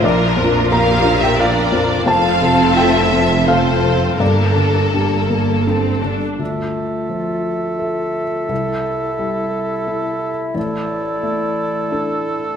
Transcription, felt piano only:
\new Staff \with { instrumentName = "Felt piano" } { \time 3/4 \key d \minor \tempo 4 = 86 << { d''4 bes''8. g''16 f''4 | a''4 g''4 f''4 | d''2 r4 | r2. |
r2. | r2. | } \\ { bes,,8 f,8 <f' bes'>8 d'8 <f' bes'>8 f,8 | f,8 c8 <f' a'>8 c'8 <f' a'>8 c8 | g,8 d8 <d' g'>8 bes8 <d' a'>8 d8 | d,4 f4 <a' e''>4 |
c,4 g4 <e' a'>4 | a,,4 a4 <d' a'>4 | } >> }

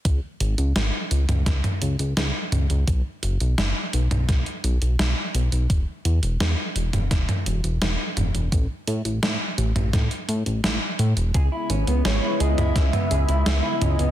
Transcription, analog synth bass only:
\new Staff \with { instrumentName = "Analog synth bass" } { \clef bass \time 4/4 \key cis \minor \tempo 4 = 85 cis,16 r16 gis,,16 cis,16 gis,,16 r16 cis,16 cis,16 cis,16 r16 cis,16 cis,16 cis,16 r16 cis,16 cis,16 | b,,16 r16 fis,,16 b,,16 fis,,16 r16 b,,16 b,,16 b,,16 r16 b,,16 b,,16 b,,16 r16 b,,16 b,,16 | e,,16 r16 e,16 e,,16 e,16 r16 e,,16 e,,16 e,,16 r16 e,,16 e,,16 e,,16 r16 e,,16 e,,16 | a,,16 r16 a,16 a,,16 a,16 r16 a,,16 a,,16 a,16 r16 a,16 a,,16 a,,16 r16 a,16 e,,16 |
cis,16 r16 gis,,16 cis,16 gis,,16 r16 cis,16 cis,16 cis,16 r16 cis,16 cis,16 cis,16 r16 cis,16 cis,16 | }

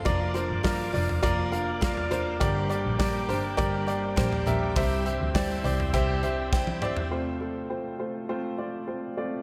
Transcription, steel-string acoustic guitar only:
\new Staff \with { instrumentName = "Steel-string acoustic guitar" } { \time 4/4 \key f \major \tempo 4 = 102 <f bes d' bes'>8 <bes d' bes'>8 <f bes d' bes'>8 <bes d' bes'>8 <f bes d' bes'>8 <bes d' bes'>8 <f bes d' bes'>8 <bes d' bes'>8 | <g, d g bes d' g'>8 <g bes d' g'>8 <g bes d' g'>8 <g bes d' g'>8 <g, d g bes d' g'>8 <g bes d' g'>8 <g bes d' g'>8 <g bes d' g'>8 | <c g c' e' g'>8 <c' e' g'>8 <g c' e' g'>8 <c' e' g'>8 <c g c' e' g'>8 <c' e' g'>8 <g c' e' g'>8 <c' e' g'>8 | r1 | }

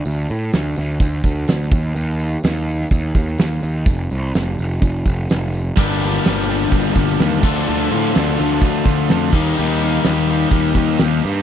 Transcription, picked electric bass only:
\new Staff \with { instrumentName = "Picked electric bass" } { \clef bass \time 4/4 \key d \phrygian \tempo 4 = 126 d,8 a,8 d,8 d,8 d,8 d,8 d,8 ees,8 | ees,4 ees,4 ees,8 ees,8 ees,8 ees,8 | f,,8 c,8 f,,8 f,,8 f,,8 f,,8 f,,4 | g,,4 g,,4 g,,8 g,,8 ees,8 d,8 |
d,8 a,8 d,8 d,8 d,8 d,8 f,8 ees,8 | ees,4 ees,4 ees,8 ees,8 ees,8 g,8 | }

